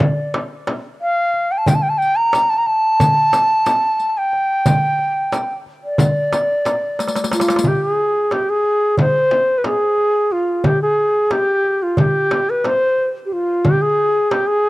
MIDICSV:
0, 0, Header, 1, 5, 480
1, 0, Start_track
1, 0, Tempo, 665188
1, 1204, Time_signature, 9, 3, 24, 8
1, 10603, End_track
2, 0, Start_track
2, 0, Title_t, "Ney"
2, 0, Program_c, 0, 77
2, 0, Note_on_c, 0, 74, 82
2, 297, Note_off_c, 0, 74, 0
2, 731, Note_on_c, 0, 77, 97
2, 1093, Note_on_c, 0, 79, 75
2, 1103, Note_off_c, 0, 77, 0
2, 1139, Note_on_c, 0, 81, 79
2, 1150, Note_off_c, 0, 79, 0
2, 1208, Note_on_c, 0, 79, 79
2, 1219, Note_off_c, 0, 81, 0
2, 1261, Note_on_c, 0, 81, 84
2, 1272, Note_off_c, 0, 79, 0
2, 1317, Note_on_c, 0, 79, 84
2, 1327, Note_off_c, 0, 81, 0
2, 1366, Note_on_c, 0, 81, 84
2, 1377, Note_off_c, 0, 79, 0
2, 1429, Note_on_c, 0, 79, 95
2, 1439, Note_off_c, 0, 81, 0
2, 1558, Note_on_c, 0, 82, 98
2, 1569, Note_off_c, 0, 79, 0
2, 1801, Note_on_c, 0, 81, 102
2, 1812, Note_off_c, 0, 82, 0
2, 1860, Note_on_c, 0, 82, 84
2, 1871, Note_off_c, 0, 81, 0
2, 1922, Note_on_c, 0, 81, 109
2, 1933, Note_off_c, 0, 82, 0
2, 2953, Note_off_c, 0, 81, 0
2, 2953, Note_on_c, 0, 81, 67
2, 3012, Note_on_c, 0, 79, 96
2, 3023, Note_off_c, 0, 81, 0
2, 4013, Note_off_c, 0, 79, 0
2, 4215, Note_on_c, 0, 74, 77
2, 5209, Note_off_c, 0, 74, 0
2, 5287, Note_on_c, 0, 65, 91
2, 5539, Note_on_c, 0, 67, 82
2, 5550, Note_off_c, 0, 65, 0
2, 5649, Note_on_c, 0, 68, 85
2, 5660, Note_off_c, 0, 67, 0
2, 6008, Note_on_c, 0, 67, 85
2, 6019, Note_off_c, 0, 68, 0
2, 6130, Note_on_c, 0, 68, 85
2, 6141, Note_off_c, 0, 67, 0
2, 6487, Note_off_c, 0, 68, 0
2, 6493, Note_on_c, 0, 72, 90
2, 6912, Note_on_c, 0, 71, 57
2, 6923, Note_off_c, 0, 72, 0
2, 6966, Note_on_c, 0, 68, 83
2, 6977, Note_off_c, 0, 71, 0
2, 7446, Note_on_c, 0, 65, 77
2, 7457, Note_off_c, 0, 68, 0
2, 7681, Note_on_c, 0, 67, 87
2, 7692, Note_off_c, 0, 65, 0
2, 7803, Note_off_c, 0, 67, 0
2, 7808, Note_on_c, 0, 68, 81
2, 8166, Note_on_c, 0, 67, 84
2, 8177, Note_off_c, 0, 68, 0
2, 8533, Note_on_c, 0, 65, 71
2, 8544, Note_off_c, 0, 67, 0
2, 8650, Note_on_c, 0, 67, 81
2, 8661, Note_off_c, 0, 65, 0
2, 9017, Note_on_c, 0, 71, 81
2, 9028, Note_off_c, 0, 67, 0
2, 9135, Note_on_c, 0, 72, 91
2, 9146, Note_off_c, 0, 71, 0
2, 9417, Note_off_c, 0, 72, 0
2, 9565, Note_on_c, 0, 67, 57
2, 9616, Note_on_c, 0, 65, 78
2, 9627, Note_off_c, 0, 67, 0
2, 9857, Note_on_c, 0, 67, 90
2, 9868, Note_off_c, 0, 65, 0
2, 9970, Note_on_c, 0, 68, 90
2, 9981, Note_off_c, 0, 67, 0
2, 10325, Note_on_c, 0, 67, 83
2, 10336, Note_off_c, 0, 68, 0
2, 10440, Note_on_c, 0, 68, 89
2, 10451, Note_off_c, 0, 67, 0
2, 10603, Note_off_c, 0, 68, 0
2, 10603, End_track
3, 0, Start_track
3, 0, Title_t, "Darbuka"
3, 5, Note_on_c, 9, 64, 79
3, 78, Note_off_c, 9, 64, 0
3, 247, Note_on_c, 9, 63, 73
3, 319, Note_off_c, 9, 63, 0
3, 485, Note_on_c, 9, 63, 67
3, 557, Note_off_c, 9, 63, 0
3, 967, Note_on_c, 9, 62, 23
3, 1039, Note_off_c, 9, 62, 0
3, 1201, Note_on_c, 9, 64, 74
3, 1273, Note_off_c, 9, 64, 0
3, 1681, Note_on_c, 9, 63, 76
3, 1753, Note_off_c, 9, 63, 0
3, 1928, Note_on_c, 9, 62, 25
3, 2000, Note_off_c, 9, 62, 0
3, 2164, Note_on_c, 9, 64, 81
3, 2236, Note_off_c, 9, 64, 0
3, 2403, Note_on_c, 9, 63, 72
3, 2475, Note_off_c, 9, 63, 0
3, 2646, Note_on_c, 9, 63, 67
3, 2718, Note_off_c, 9, 63, 0
3, 3125, Note_on_c, 9, 62, 29
3, 3197, Note_off_c, 9, 62, 0
3, 3360, Note_on_c, 9, 64, 89
3, 3432, Note_off_c, 9, 64, 0
3, 3601, Note_on_c, 9, 62, 28
3, 3673, Note_off_c, 9, 62, 0
3, 3842, Note_on_c, 9, 63, 71
3, 3914, Note_off_c, 9, 63, 0
3, 4086, Note_on_c, 9, 62, 26
3, 4158, Note_off_c, 9, 62, 0
3, 4318, Note_on_c, 9, 64, 93
3, 4390, Note_off_c, 9, 64, 0
3, 4565, Note_on_c, 9, 63, 71
3, 4637, Note_off_c, 9, 63, 0
3, 4808, Note_on_c, 9, 63, 67
3, 4880, Note_off_c, 9, 63, 0
3, 5045, Note_on_c, 9, 63, 57
3, 5106, Note_on_c, 9, 62, 62
3, 5118, Note_off_c, 9, 63, 0
3, 5163, Note_on_c, 9, 63, 60
3, 5178, Note_off_c, 9, 62, 0
3, 5224, Note_on_c, 9, 62, 63
3, 5235, Note_off_c, 9, 63, 0
3, 5279, Note_on_c, 9, 63, 74
3, 5296, Note_off_c, 9, 62, 0
3, 5339, Note_on_c, 9, 62, 81
3, 5351, Note_off_c, 9, 63, 0
3, 5401, Note_on_c, 9, 63, 81
3, 5411, Note_off_c, 9, 62, 0
3, 5457, Note_on_c, 9, 62, 85
3, 5473, Note_off_c, 9, 63, 0
3, 5513, Note_on_c, 9, 64, 62
3, 5529, Note_off_c, 9, 62, 0
3, 5585, Note_off_c, 9, 64, 0
3, 5998, Note_on_c, 9, 63, 58
3, 6070, Note_off_c, 9, 63, 0
3, 6235, Note_on_c, 9, 62, 21
3, 6308, Note_off_c, 9, 62, 0
3, 6477, Note_on_c, 9, 64, 70
3, 6549, Note_off_c, 9, 64, 0
3, 6958, Note_on_c, 9, 63, 54
3, 7030, Note_off_c, 9, 63, 0
3, 7200, Note_on_c, 9, 62, 23
3, 7272, Note_off_c, 9, 62, 0
3, 7439, Note_on_c, 9, 62, 22
3, 7511, Note_off_c, 9, 62, 0
3, 7677, Note_on_c, 9, 64, 80
3, 7750, Note_off_c, 9, 64, 0
3, 8159, Note_on_c, 9, 63, 60
3, 8231, Note_off_c, 9, 63, 0
3, 8401, Note_on_c, 9, 62, 21
3, 8473, Note_off_c, 9, 62, 0
3, 8639, Note_on_c, 9, 64, 83
3, 8711, Note_off_c, 9, 64, 0
3, 8884, Note_on_c, 9, 63, 67
3, 8956, Note_off_c, 9, 63, 0
3, 9124, Note_on_c, 9, 63, 65
3, 9196, Note_off_c, 9, 63, 0
3, 9370, Note_on_c, 9, 62, 23
3, 9442, Note_off_c, 9, 62, 0
3, 9611, Note_on_c, 9, 62, 22
3, 9683, Note_off_c, 9, 62, 0
3, 9851, Note_on_c, 9, 64, 84
3, 9924, Note_off_c, 9, 64, 0
3, 10329, Note_on_c, 9, 63, 71
3, 10401, Note_off_c, 9, 63, 0
3, 10570, Note_on_c, 9, 62, 23
3, 10603, Note_off_c, 9, 62, 0
3, 10603, End_track
4, 0, Start_track
4, 0, Title_t, "Frame drum"
4, 0, Note_on_c, 9, 64, 84
4, 72, Note_off_c, 9, 64, 0
4, 245, Note_on_c, 9, 64, 67
4, 318, Note_off_c, 9, 64, 0
4, 488, Note_on_c, 9, 64, 71
4, 560, Note_off_c, 9, 64, 0
4, 1208, Note_on_c, 9, 64, 83
4, 1280, Note_off_c, 9, 64, 0
4, 1689, Note_on_c, 9, 64, 63
4, 1761, Note_off_c, 9, 64, 0
4, 2166, Note_on_c, 9, 64, 84
4, 2238, Note_off_c, 9, 64, 0
4, 2402, Note_on_c, 9, 64, 67
4, 2475, Note_off_c, 9, 64, 0
4, 2645, Note_on_c, 9, 64, 68
4, 2718, Note_off_c, 9, 64, 0
4, 3365, Note_on_c, 9, 64, 87
4, 3437, Note_off_c, 9, 64, 0
4, 3841, Note_on_c, 9, 64, 62
4, 3913, Note_off_c, 9, 64, 0
4, 4323, Note_on_c, 9, 64, 94
4, 4395, Note_off_c, 9, 64, 0
4, 4565, Note_on_c, 9, 64, 61
4, 4637, Note_off_c, 9, 64, 0
4, 4802, Note_on_c, 9, 64, 68
4, 4874, Note_off_c, 9, 64, 0
4, 5517, Note_on_c, 9, 64, 69
4, 5589, Note_off_c, 9, 64, 0
4, 6005, Note_on_c, 9, 64, 64
4, 6077, Note_off_c, 9, 64, 0
4, 6484, Note_on_c, 9, 64, 78
4, 6556, Note_off_c, 9, 64, 0
4, 6719, Note_on_c, 9, 64, 64
4, 6792, Note_off_c, 9, 64, 0
4, 6960, Note_on_c, 9, 64, 69
4, 7032, Note_off_c, 9, 64, 0
4, 7680, Note_on_c, 9, 64, 77
4, 7752, Note_off_c, 9, 64, 0
4, 8160, Note_on_c, 9, 64, 64
4, 8233, Note_off_c, 9, 64, 0
4, 8645, Note_on_c, 9, 64, 81
4, 8717, Note_off_c, 9, 64, 0
4, 8886, Note_on_c, 9, 64, 65
4, 8958, Note_off_c, 9, 64, 0
4, 9130, Note_on_c, 9, 64, 64
4, 9202, Note_off_c, 9, 64, 0
4, 9847, Note_on_c, 9, 64, 78
4, 9919, Note_off_c, 9, 64, 0
4, 10328, Note_on_c, 9, 64, 64
4, 10400, Note_off_c, 9, 64, 0
4, 10603, End_track
5, 0, Start_track
5, 0, Title_t, "Riq"
5, 1212, Note_on_c, 9, 54, 57
5, 1284, Note_off_c, 9, 54, 0
5, 1458, Note_on_c, 9, 54, 19
5, 1531, Note_off_c, 9, 54, 0
5, 1694, Note_on_c, 9, 54, 42
5, 1766, Note_off_c, 9, 54, 0
5, 2172, Note_on_c, 9, 54, 58
5, 2244, Note_off_c, 9, 54, 0
5, 2408, Note_on_c, 9, 54, 47
5, 2480, Note_off_c, 9, 54, 0
5, 2642, Note_on_c, 9, 54, 45
5, 2714, Note_off_c, 9, 54, 0
5, 2884, Note_on_c, 9, 54, 19
5, 2956, Note_off_c, 9, 54, 0
5, 3360, Note_on_c, 9, 54, 62
5, 3432, Note_off_c, 9, 54, 0
5, 3846, Note_on_c, 9, 54, 42
5, 3918, Note_off_c, 9, 54, 0
5, 4328, Note_on_c, 9, 54, 56
5, 4400, Note_off_c, 9, 54, 0
5, 4570, Note_on_c, 9, 54, 49
5, 4642, Note_off_c, 9, 54, 0
5, 4807, Note_on_c, 9, 54, 49
5, 4879, Note_off_c, 9, 54, 0
5, 5052, Note_on_c, 9, 54, 55
5, 5112, Note_off_c, 9, 54, 0
5, 5112, Note_on_c, 9, 54, 58
5, 5168, Note_off_c, 9, 54, 0
5, 5168, Note_on_c, 9, 54, 65
5, 5226, Note_off_c, 9, 54, 0
5, 5226, Note_on_c, 9, 54, 72
5, 5288, Note_off_c, 9, 54, 0
5, 5288, Note_on_c, 9, 54, 79
5, 5348, Note_off_c, 9, 54, 0
5, 5348, Note_on_c, 9, 54, 84
5, 5411, Note_off_c, 9, 54, 0
5, 5411, Note_on_c, 9, 54, 79
5, 5475, Note_off_c, 9, 54, 0
5, 5475, Note_on_c, 9, 54, 90
5, 5547, Note_off_c, 9, 54, 0
5, 10603, End_track
0, 0, End_of_file